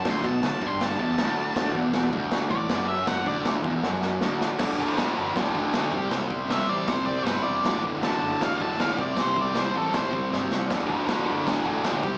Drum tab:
CC |x-x-x-x-|x-x-x-x-|x-x-----|x-x-x-x-|
SD |o-o-o-o-|o-o-o-o-|o-o-oooo|o-o-o-o-|
BD |oo-o-o--|oo-o-o--|oo-o----|oo--oo-o|

CC |x-x-x-x-|x-x-x-x-|x-x-x---|x-x-x-x-|
SD |o-o-o-o-|o-o-o-o-|o-o-o-oo|o-o-o-o-|
BD |-o--oo--|oo--oo-o|-o--oo--|oo--oo-o|